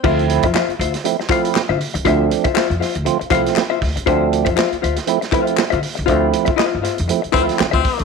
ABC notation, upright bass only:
X:1
M:4/4
L:1/16
Q:"Swing 16ths" 1/4=119
K:Dm
V:1 name="Upright bass" clef=bass
D,,3 F,, z2 D,, z6 D, z ^C,, | D,,2 z3 F,, z D,, z2 C,, z3 D,, ^C,, | D,,3 F,, z2 D,, z6 D, z ^C,, | D,,2 z3 G,, z F,, z2 D,, z D, D,, z ^C,, |]